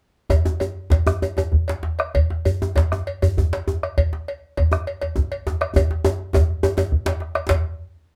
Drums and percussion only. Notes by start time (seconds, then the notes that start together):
0.30 bombo low, cowbell, djembe tone, djembe bass
0.45 djembe slap, djembe tone
0.60 cowbell, djembe slap, djembe tone
0.90 bombo rim, bombo low, cowbell, djembe slap, djembe tone, djembe bass
1.07 bombo rim, djembe tone
1.22 cowbell, djembe tone
1.37 cowbell, djembe slap, djembe tone
1.52 bombo low, djembe bass
1.68 cowbell, djembe slap
1.83 djembe slap, djembe tone
1.99 bombo rim, cowbell, djembe slap
2.15 bombo low, cowbell, djembe bass
2.30 djembe slap, djembe tone
2.45 cowbell, djembe bass
2.62 djembe tone
2.76 bombo rim, bombo low, cowbell, djembe slap, djembe tone, djembe bass
2.78 djembe slap
2.92 bombo rim, djembe tone
3.07 cowbell
3.22 cowbell, djembe slap, djembe tone, djembe bass
3.37 bombo low, djembe tone, djembe bass
3.53 cowbell, djembe slap
3.68 djembe tone
3.83 bombo rim, cowbell, djembe slap
3.98 bombo low, cowbell, djembe bass
4.13 djembe slap, djembe tone
4.28 cowbell, djembe slap
4.57 bombo rim, bombo low, cowbell, djembe slap, djembe tone, djembe bass
4.72 bombo rim, djembe tone
4.87 cowbell
5.01 cowbell, djembe slap, djembe tone
5.16 bombo low, djembe tone
5.32 cowbell
5.47 djembe slap, djembe tone
5.61 bombo rim, cowbell, djembe slap
5.76 bombo rim, bombo low, cowbell, djembe slap, djembe tone, djembe bass
5.91 djembe slap, djembe tone
6.05 cowbell, djembe tone
6.19 djembe slap
6.33 bombo rim, bombo low, cowbell, djembe slap, djembe tone, djembe bass
6.63 cowbell, djembe tone
6.77 cowbell, djembe slap, djembe tone
6.91 bombo low, djembe bass
7.06 bombo rim, cowbell, djembe slap, djembe bass
7.20 bombo rim, djembe slap
7.35 bombo rim, cowbell, djembe slap
7.49 bombo low, cowbell, djembe slap, djembe bass